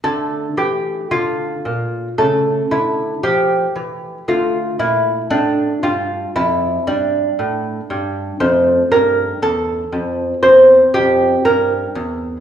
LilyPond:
<<
  \new Staff \with { instrumentName = "Lute" } { \time 4/4 \key d \minor \tempo 4 = 58 a'8 g'8 f'4 a'8 e'8 g'4 | f'8 e'8 d'8 f'8 e'8 d'4. | c''8 bes'8 a'4 c''8 g'8 bes'4 | }
  \new Staff \with { instrumentName = "Lute" } { \clef bass \time 4/4 \key d \minor << { a2 a2 | a1 | a2 c'2 | } \\ { d8 e8 d8 bes,8 cis8 d8 f8 e8 | d8 bes,8 a,8 g,8 f,8 g,8 a,8 g,8 | f,8 g,8 e,8 f,8 e,8 f,8 g,8 e,8 | } >> }
>>